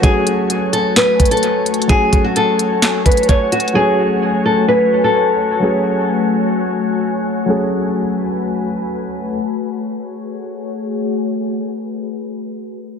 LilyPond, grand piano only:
\new Staff \with { instrumentName = "Grand piano" } { \time 4/4 \key fis \minor \tempo 4 = 129 <fis a cis' fis'>1 | <fis a cis' fis'>1 | <fis a cis' fis'>1 | <fis a cis' gis'>1 |
<fis a cis' gis'>1 | r1 | r1 | }